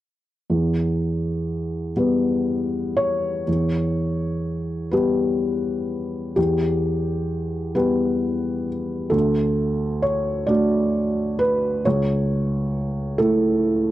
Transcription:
0.50 E2
1.97 G3 B3 B4
2.97 C#5
3.47 E2
4.91 G3 B3 G4 B4
6.36 E2 G4
7.75 G3 B3 G4 B4
9.10 D2 A4
10.02 C#5
10.47 A3 D4 F#4 D5
11.39 B4
11.85 C#2 C#5
13.18 A3 E4 A4

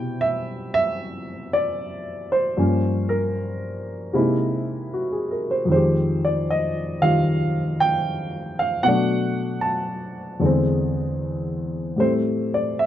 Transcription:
Already playing: B2 C3 G3 E4 G5
0.21 E5
0.74 E5
1.53 D5
2.32 C5
2.57 G2 F3 A#3 C#4
3.09 A#4
4.13 C3 G#3 A#3 D#4 E4
4.93 F#4
5.12 G#4
5.31 A#4
5.51 C5
5.65 F2 D#3
5.72 G#3 C5
5.76 G4
6.25 D5
6.50 D#5
7.02 D#3 G3 F4 F5
7.80 G5
8.59 F5
8.83 B2 F#3 A3 F#5
8.88 D4
9.61 A5
10.40 E2 D3 G#3
10.45 C4
11.96 A2 G3 A3 C5
12.01 C4
12.54 D5
12.79 E5

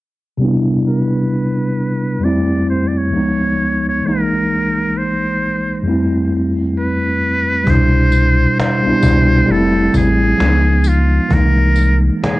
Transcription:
0.38 C3 G3 B3
0.43 D4 E4
0.88 B4
2.19 F2 G3 A3
2.24 C4 E4 D5
2.70 C5
2.88 D5
2.97 C#5
3.10 C#2 F3 G#3
3.15 B3 D#4
3.88 C#5
4.01 C2 E3 G#3
4.06 A#3 D#4 A#4
4.97 C5
5.82 F2 G3 A3
5.87 C4 E4
6.78 B4
7.64 C2 B2 G3, cajon bass
7.69 D4 E4 C5
8.12 cajon slap, tambourine
8.60 C5, cajon slap
8.83 C2 G3 B3
8.87 D4 E4
9.00 C2 B2 G3, cajon bass, tambourine
9.05 D4 E4
9.46 F1 G3 A3, cajon slap
9.50 C4 E4 A4
9.94 A1 G#4, cajon bass, tambourine
10.37 C#2 F3 G#3, cajon slap
10.42 B3 D4
10.51 D#4
10.84 F4, cajon slap, tambourine
11.28 C2 E3 G#3, cajon bass
11.33 A#3 D#4 A#4
11.76 cajon slap, tambourine
12.23 G#4, cajon slap

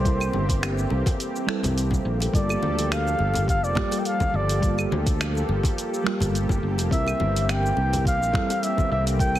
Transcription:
Already playing: C2 E3 G3 A#3 C4 E4 G4 A4 C5
0.03 G3 C4 E4, kick, open hi-hat, shaker
0.07 A#4
0.20 high bongo, claves, shaker
0.33 G1, high conga
0.49 kick, open hi-hat, shaker
0.63 finger snap, open hi-hat, claves, shaker
0.77 high bongo, shaker
0.90 C2, high bongo
1.06 kick, open hi-hat, high conga, low conga, shaker
1.20 open hi-hat, shaker
1.36 shaker
1.47 G3 C4 E4 A4, finger snap
1.63 C2, open hi-hat, low conga, shaker
1.78 open hi-hat, shaker
1.91 kick, high conga, shaker
2.05 A#1
2.20 open hi-hat, high bongo, shaker
2.32 G1 F3 G3 A#3 F4 G4 A4 D5, kick, open hi-hat, shaker
2.49 high bongo, claves, shaker
2.63 D2, high conga
2.79 open hi-hat, shaker
2.92 F5, finger snap, open hi-hat, claves, shaker
3.07 high bongo, shaker
3.19 G1, high bongo
3.34 open hi-hat, high conga, low conga, shaker
3.48 F5, kick, open hi-hat, shaker
3.64 F1 D5, shaker
3.75 G3 A#3 F4 G4, finger snap, kick, low conga
3.91 open hi-hat, high bongo, shaker
3.99 G5
4.05 F5, open hi-hat, shaker
4.20 kick, high conga, shaker
4.34 G1 D5
4.49 open hi-hat, shaker
4.61 G3 A#3 F4, kick, open hi-hat, shaker
4.65 A4
4.78 high bongo, claves, shaker
4.91 D2, high conga
5.06 kick, open hi-hat, shaker
5.21 finger snap, open hi-hat, claves, shaker
5.35 high bongo, shaker
5.49 G1, high bongo
5.63 kick, open hi-hat, high conga, low conga, shaker
5.78 open hi-hat, shaker
5.94 shaker
6.04 G3 A#3 F4, finger snap
6.08 G4
6.20 G1, open hi-hat, low conga, shaker
6.35 open hi-hat, shaker
6.49 G1, kick, high conga, shaker
6.63 G1
6.78 F1, open hi-hat, high bongo, shaker
6.90 C2 E3 G3 C4 E4 A#4 E5, kick, open hi-hat, shaker
7.06 high bongo, claves, shaker
7.20 G1, high conga
7.36 open hi-hat, shaker
7.49 G5, finger snap, open hi-hat, claves, shaker
7.63 high bongo, shaker
7.77 C2, high bongo
7.93 open hi-hat, high conga, low conga, shaker
8.05 F5, kick, open hi-hat, shaker
8.21 A#1, shaker
8.33 G3 C4 E4, finger snap, kick, low conga
8.37 A4
8.50 open hi-hat, high bongo, shaker
8.63 E5, open hi-hat, shaker
8.78 kick, high conga, shaker
8.91 C2 E5
9.07 open hi-hat, shaker
9.18 G3 C4 E4 A#4 G5, kick, open hi-hat, shaker
9.36 high bongo, claves, shaker

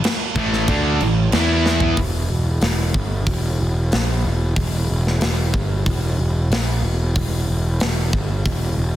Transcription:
0.04 muted picked electric bass stroke, muted overdriven electric guitar stroke, muted distorted electric guitar stroke, snare, crash
0.35 A1 A2 E3 A3, kick, crash
0.53 snare
0.68 D2 D3 A3 D4, kick, crash
1.00 A1 A2 E3, crash
1.32 E2 E3 B3 E4, snare, crash
1.66 snare
1.80 floor tom
1.97 E1, kick, open hi-hat
2.30 E1
2.61 E1, snare, open hi-hat
2.94 G1, kick
3.27 E1, kick, open hi-hat
3.61 E1
3.92 A#1, snare, open hi-hat
4.25 E1
4.56 E1, kick, open hi-hat
4.90 E1
5.07 snare
5.21 E1, snare, open hi-hat
5.54 G1, kick
5.86 E1, kick, open hi-hat
6.19 E1
6.50 A#1, snare, open hi-hat
6.83 E1
7.16 kick, open hi-hat
7.48 E1
7.80 E1, snare, open hi-hat
8.13 G1, kick
8.46 E1, kick, open hi-hat
8.78 E1

